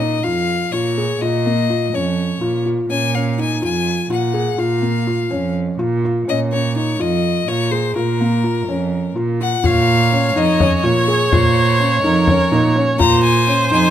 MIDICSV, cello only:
0, 0, Header, 1, 2, 480
1, 0, Start_track
1, 0, Key_signature, -5, "minor"
1, 0, Tempo, 482703
1, 1197, Time_signature, 7, 3, 24, 8
1, 7195, Tempo, 479233
1, 13872, End_track
2, 0, Start_track
2, 0, Title_t, "Cello"
2, 0, Program_c, 0, 42
2, 0, Note_on_c, 0, 46, 72
2, 158, Note_off_c, 0, 46, 0
2, 242, Note_on_c, 0, 41, 65
2, 666, Note_off_c, 0, 41, 0
2, 722, Note_on_c, 0, 46, 69
2, 1146, Note_off_c, 0, 46, 0
2, 1200, Note_on_c, 0, 46, 72
2, 1839, Note_off_c, 0, 46, 0
2, 1925, Note_on_c, 0, 41, 67
2, 2349, Note_off_c, 0, 41, 0
2, 2395, Note_on_c, 0, 46, 64
2, 2823, Note_off_c, 0, 46, 0
2, 2880, Note_on_c, 0, 46, 71
2, 3519, Note_off_c, 0, 46, 0
2, 3604, Note_on_c, 0, 41, 68
2, 4028, Note_off_c, 0, 41, 0
2, 4082, Note_on_c, 0, 46, 66
2, 4507, Note_off_c, 0, 46, 0
2, 4553, Note_on_c, 0, 46, 78
2, 5195, Note_off_c, 0, 46, 0
2, 5284, Note_on_c, 0, 41, 65
2, 5708, Note_off_c, 0, 41, 0
2, 5760, Note_on_c, 0, 46, 74
2, 6185, Note_off_c, 0, 46, 0
2, 6248, Note_on_c, 0, 46, 73
2, 6881, Note_off_c, 0, 46, 0
2, 6962, Note_on_c, 0, 41, 72
2, 7386, Note_off_c, 0, 41, 0
2, 7442, Note_on_c, 0, 46, 69
2, 7868, Note_off_c, 0, 46, 0
2, 7932, Note_on_c, 0, 46, 74
2, 8567, Note_off_c, 0, 46, 0
2, 8639, Note_on_c, 0, 41, 67
2, 9067, Note_off_c, 0, 41, 0
2, 9124, Note_on_c, 0, 46, 67
2, 9550, Note_off_c, 0, 46, 0
2, 9605, Note_on_c, 0, 46, 86
2, 10244, Note_off_c, 0, 46, 0
2, 10330, Note_on_c, 0, 41, 77
2, 10540, Note_off_c, 0, 41, 0
2, 10803, Note_on_c, 0, 46, 75
2, 11016, Note_off_c, 0, 46, 0
2, 11286, Note_on_c, 0, 46, 86
2, 11923, Note_off_c, 0, 46, 0
2, 12002, Note_on_c, 0, 41, 82
2, 12215, Note_off_c, 0, 41, 0
2, 12483, Note_on_c, 0, 46, 83
2, 12695, Note_off_c, 0, 46, 0
2, 12956, Note_on_c, 0, 46, 89
2, 13595, Note_off_c, 0, 46, 0
2, 13682, Note_on_c, 0, 41, 80
2, 13872, Note_off_c, 0, 41, 0
2, 13872, End_track
0, 0, End_of_file